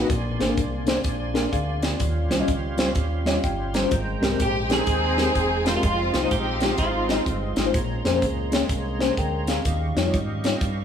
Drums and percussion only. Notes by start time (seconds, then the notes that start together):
0.10 kick, closed hi-hat
0.41 snare, closed hi-hat
0.57 kick, closed hi-hat
0.87 snare, closed hi-hat
1.04 kick, closed hi-hat
1.35 snare, closed hi-hat
1.53 kick, closed hi-hat
1.82 snare, closed hi-hat
2.00 kick, closed hi-hat
2.31 snare, closed hi-hat
2.48 kick, closed hi-hat
2.78 snare, closed hi-hat
2.95 kick, closed hi-hat
3.26 snare, closed hi-hat
3.44 kick, closed hi-hat
3.74 snare, closed hi-hat
3.91 kick, closed hi-hat
4.23 snare, closed hi-hat
4.40 kick, closed hi-hat
4.70 snare, closed hi-hat
4.87 kick, closed hi-hat
5.18 snare, closed hi-hat
5.35 kick, closed hi-hat
5.66 snare, closed hi-hat
5.83 kick, closed hi-hat
6.14 snare, closed hi-hat
6.31 kick, closed hi-hat
6.60 snare, closed hi-hat
6.78 kick, closed hi-hat
7.09 snare, closed hi-hat
7.26 kick, closed hi-hat
7.56 snare, closed hi-hat
7.74 kick, closed hi-hat
8.05 snare, closed hi-hat
8.22 kick, closed hi-hat
8.52 snare, closed hi-hat
8.69 kick, closed hi-hat
9.01 snare, closed hi-hat
9.17 kick, closed hi-hat
9.47 snare, closed hi-hat
9.65 kick, closed hi-hat
9.97 snare, closed hi-hat
10.14 kick, closed hi-hat
10.44 snare, closed hi-hat
10.61 kick, closed hi-hat